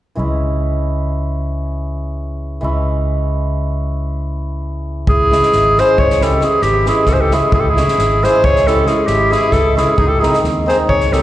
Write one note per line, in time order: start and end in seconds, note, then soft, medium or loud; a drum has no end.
0.15 2.59 C#2 medium
0.15 2.60 E3 medium
0.15 2.60 G#3 soft
0.15 2.62 C#4 soft
0.15 2.64 E4 medium
2.61 5.04 C#2 medium
2.61 5.13 E3 medium
2.61 5.13 G#3 soft
2.61 5.32 C#4 soft
2.61 5.32 E4 medium
5.07 5.35 C#2 medium
5.07 5.82 E4 medium
5.07 5.81 G#4 loud
5.07 kick medium
5.31 5.76 E3 medium
5.31 5.77 G#3 medium
5.31 5.44 C#4 medium
5.31 5.44 E4 medium
5.31 snare soft
5.43 snare soft
5.52 5.81 G#1 medium
5.52 snare soft
5.77 6.20 E3 medium
5.77 6.20 G#3 medium
5.77 5.90 C#4 medium
5.77 5.90 E4 medium
5.77 6.01 G#4 medium
5.77 6.02 C5 loud
5.77 snare soft
5.98 6.37 C#2 medium
5.98 6.25 G#4 medium
5.98 6.25 C#5 medium
5.98 kick medium
6.10 snare soft
6.21 6.39 E3 medium
6.21 6.39 G#3 soft
6.21 6.33 C#4 medium
6.21 6.33 E4 medium
6.21 6.47 G4 medium
6.21 6.45 A4 medium
6.21 snare soft
6.40 6.85 E3 medium
6.40 6.85 G#3 medium
6.40 6.53 C#4 medium
6.40 6.53 E4 medium
6.40 6.65 G#4 medium
6.40 snare soft
6.45 6.64 E4 medium
6.62 6.89 G#1 medium
6.62 6.88 E4 medium
6.62 6.87 G4 loud
6.62 snare soft
6.86 7.30 E3 medium
6.86 7.30 G#3 medium
6.86 6.99 C#4 medium
6.86 6.99 E4 medium
6.86 7.08 E4 medium
6.86 7.10 G#4 medium
6.86 snare soft
7.06 7.35 C#2 medium
7.06 7.14 E4 medium
7.06 7.15 A4 medium
7.06 kick medium
7.06 snare soft
7.13 7.22 G#4 medium
7.13 7.23 C5 medium
7.20 7.36 G4 medium
7.20 7.35 A4 medium
7.31 7.76 E3 medium
7.31 7.76 G#3 medium
7.31 7.44 C#4 medium
7.31 7.44 E4 medium
7.31 7.54 E4 medium
7.31 7.53 G#4 medium
7.31 snare soft
7.52 7.80 C#2 medium
7.52 7.62 E4 medium
7.52 7.62 G#4 medium
7.52 kick loud
7.60 7.72 G4 medium
7.60 7.71 A4 medium
7.70 8.26 E4 medium
7.70 8.25 G#4 medium
7.77 8.21 E3 medium
7.77 8.22 G#3 medium
7.77 7.90 C#4 medium
7.77 7.90 E4 medium
7.77 snare soft
7.88 snare soft
7.98 8.25 G#1 medium
7.98 snare soft
8.22 8.65 E3 medium
8.22 8.66 G#3 medium
8.22 8.35 C#4 medium
8.22 8.35 E4 medium
8.22 8.44 G#4 medium
8.22 8.47 C5 loud
8.22 snare soft
8.44 8.82 C#2 medium
8.44 8.69 G#4 medium
8.44 8.69 C#5 loud
8.44 kick loud
8.56 snare soft
8.66 8.85 E3 medium
8.66 8.85 G#3 medium
8.66 8.78 C#4 medium
8.66 8.79 E4 medium
8.66 8.89 G4 medium
8.66 8.89 A4 medium
8.66 snare soft
8.86 9.29 E3 medium
8.86 9.30 G#3 soft
8.86 8.99 C#4 medium
8.86 9.08 E4 medium
8.86 8.99 E4 medium
8.86 9.09 G#4 medium
8.86 snare soft
9.07 9.34 G#1 medium
9.07 9.34 E4 medium
9.07 9.34 G4 medium
9.07 snare soft
9.30 9.74 E3 medium
9.30 9.76 G#3 medium
9.30 9.43 C#4 medium
9.30 9.43 E4 medium
9.30 9.53 E4 medium
9.30 9.54 G#4 loud
9.30 snare soft
9.52 9.80 C#2 medium
9.52 9.77 E4 medium
9.52 9.77 A4 medium
9.52 kick medium
9.52 snare soft
9.76 10.02 E3 medium
9.76 10.02 G#3 medium
9.76 9.88 C#4 medium
9.76 9.96 E4 medium
9.76 9.89 E4 medium
9.76 9.96 G#4 medium
9.76 snare soft
9.97 10.25 C#2 loud
9.97 10.09 D#4 medium
9.97 10.10 G#4 medium
9.97 kick medium
10.07 10.22 G4 medium
10.07 10.21 A4 medium
10.19 10.65 D#3 medium
10.19 10.65 G#3 medium
10.19 10.34 C4 medium
10.19 10.35 D#4 medium
10.19 10.38 E4 medium
10.19 10.38 G#4 medium
10.19 snare soft
10.33 snare soft
10.43 10.71 D#2 medium
10.43 snare soft
10.66 11.10 D#3 medium
10.66 11.11 G#3 medium
10.66 10.79 C4 soft
10.66 10.80 D#4 medium
10.66 10.78 G#4 medium
10.66 10.78 C5 medium
10.66 snare soft
10.89 11.22 C#2 medium
10.89 11.15 G#4 medium
10.89 11.14 C#5 loud
10.89 kick medium
11.00 snare soft
11.11 11.22 D#3 medium
11.11 11.22 G#3 soft
11.11 11.22 C4 medium
11.11 11.22 D#4 medium
11.11 11.22 G4 medium
11.11 11.22 A4 medium
11.11 snare soft